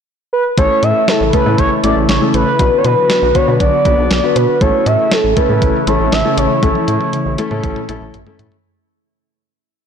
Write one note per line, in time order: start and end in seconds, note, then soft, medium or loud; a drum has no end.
0.33 0.44 B4 medium
0.57 0.68 A1 loud
0.57 2.57 C#3 medium
0.57 2.57 E3 medium
0.57 1.10 A3 medium
0.57 2.57 A3 medium
0.57 1.10 C#4 medium
0.57 1.10 E4 medium
0.57 2.57 E4 medium
0.57 1.10 A4 medium
0.57 0.85 C#5 loud
0.57 kick loud
0.57 closed hi-hat medium
0.83 0.93 A2 loud
0.83 1.10 E5 loud
0.83 closed hi-hat medium
1.08 1.33 A4 loud
1.08 snare loud
1.08 closed hi-hat medium
1.21 1.31 A1 medium
1.33 1.42 A3 medium
1.33 1.42 C#4 medium
1.33 1.42 E4 medium
1.33 1.42 A4 medium
1.33 1.57 B4 loud
1.33 kick medium
1.33 closed hi-hat medium
1.46 1.56 A2 medium
1.46 1.72 A3 medium
1.46 1.72 C#4 medium
1.46 1.72 E4 medium
1.46 1.72 A4 medium
1.58 1.68 A1 loud
1.58 1.70 C#5 loud
1.58 kick medium
1.58 closed hi-hat medium
1.83 1.94 A1 loud
1.83 2.10 A3 medium
1.83 2.10 C#4 medium
1.83 2.10 E4 medium
1.83 2.10 A4 medium
1.83 1.95 D5 loud
1.83 closed hi-hat medium
1.96 2.06 A1 loud
2.09 2.19 A1 loud
2.09 2.20 C#5 medium
2.09 snare loud
2.09 closed hi-hat medium
2.21 2.48 A3 medium
2.21 2.48 C#4 medium
2.21 2.48 E4 medium
2.21 2.48 A4 medium
2.34 2.44 A1 loud
2.34 2.75 B4 loud
2.34 closed hi-hat medium
2.59 2.69 B1 loud
2.59 4.59 D3 medium
2.59 4.59 F#3 medium
2.59 3.12 B3 medium
2.59 4.59 B3 medium
2.59 3.12 D4 medium
2.59 3.12 F#4 medium
2.59 4.59 F#4 medium
2.59 3.12 B4 medium
2.59 kick loud
2.59 closed hi-hat medium
2.78 2.86 C#5 medium
2.84 2.95 B2 loud
2.84 3.35 B4 loud
2.84 closed hi-hat medium
3.10 snare loud
3.10 closed hi-hat medium
3.22 3.32 B1 loud
3.35 3.44 B3 medium
3.35 3.44 D4 medium
3.35 3.44 F#4 medium
3.35 3.44 B4 medium
3.35 3.46 C#5 medium
3.35 kick medium
3.35 closed hi-hat medium
3.47 3.58 B2 loud
3.47 3.74 B3 medium
3.47 3.74 D4 medium
3.47 3.74 F#4 medium
3.47 3.74 B4 medium
3.60 3.70 B1 loud
3.60 4.37 D5 loud
3.60 kick medium
3.60 closed hi-hat medium
3.85 3.95 B1 loud
3.85 4.12 B3 medium
3.85 4.12 D4 medium
3.85 4.12 F#4 medium
3.85 4.12 B4 medium
3.85 kick loud
3.85 closed hi-hat medium
3.98 4.08 B1 medium
4.11 4.21 B1 loud
4.11 snare loud
4.11 closed hi-hat medium
4.23 4.49 B3 medium
4.23 4.49 D4 medium
4.23 4.49 F#4 medium
4.23 4.49 B4 medium
4.36 4.46 B2 loud
4.36 4.62 B4 medium
4.36 closed hi-hat medium
4.61 4.71 A1 loud
4.61 8.61 C#3 medium
4.61 8.60 E3 medium
4.61 5.13 A3 medium
4.61 8.61 A3 medium
4.61 5.13 C#4 medium
4.61 8.61 E4 medium
4.61 5.13 E4 medium
4.61 5.13 A4 medium
4.61 4.88 C#5 loud
4.61 kick loud
4.61 closed hi-hat medium
4.86 4.96 A2 loud
4.86 5.13 E5 loud
4.86 closed hi-hat medium
5.11 5.38 A4 medium
5.11 snare loud
5.11 closed hi-hat medium
5.24 5.34 A1 loud
5.37 5.45 A3 medium
5.37 5.45 C#4 medium
5.37 5.45 E4 medium
5.37 5.45 A4 medium
5.37 5.89 B4 loud
5.37 kick medium
5.37 closed hi-hat medium
5.49 5.59 A2 medium
5.49 5.75 A3 medium
5.49 5.75 C#4 medium
5.49 5.75 E4 medium
5.49 5.75 A4 medium
5.62 5.72 A1 loud
5.62 kick medium
5.62 closed hi-hat medium
5.87 5.97 A1 loud
5.87 6.13 A3 medium
5.87 6.13 C#4 medium
5.87 6.13 E4 medium
5.87 6.13 A4 medium
5.87 6.14 C#5 medium
5.87 closed hi-hat medium
6.00 6.10 A1 loud
6.12 6.22 A1 loud
6.12 6.39 E5 loud
6.12 snare loud
6.12 closed hi-hat medium
6.25 6.51 A3 medium
6.25 6.51 C#4 medium
6.25 6.51 E4 medium
6.25 6.51 A4 medium
6.38 6.48 A1 loud
6.38 8.14 C#5 loud
6.38 closed hi-hat medium
6.63 6.73 A1 loud
6.63 7.15 A3 medium
6.63 7.15 C#4 medium
6.63 7.15 E4 medium
6.63 7.15 A4 medium
6.63 kick loud
6.63 closed hi-hat medium
6.63 high tom medium
6.75 high tom medium
6.88 6.98 A2 loud
6.88 closed hi-hat medium
7.01 high tom medium
7.13 closed hi-hat medium
7.13 mid tom medium
7.26 7.36 A1 loud
7.38 7.47 A3 medium
7.38 7.47 C#4 medium
7.38 7.47 E4 medium
7.38 7.47 A4 loud
7.38 closed hi-hat medium
7.38 mid tom medium
7.51 7.61 A2 medium
7.51 7.77 A3 medium
7.51 7.77 C#4 medium
7.51 7.77 E4 medium
7.51 7.77 A4 loud
7.51 mid tom medium
7.63 7.74 A1 loud
7.63 kick medium
7.63 closed hi-hat medium
7.76 mid tom medium
7.89 7.99 A1 medium
7.89 8.15 A3 medium
7.89 8.15 C#4 medium
7.89 8.15 E4 medium
7.89 8.15 A4 loud
7.89 closed hi-hat medium
7.89 mid tom medium
8.01 8.11 A1 loud
8.14 8.24 A1 loud
8.14 closed hi-hat medium
8.14 floor tom medium
8.27 8.53 A3 medium
8.27 8.53 C#4 medium
8.27 8.53 E4 medium
8.27 8.53 A4 medium
8.27 floor tom medium
8.39 8.49 A2 loud
8.39 closed hi-hat medium
8.39 floor tom loud
8.52 floor tom medium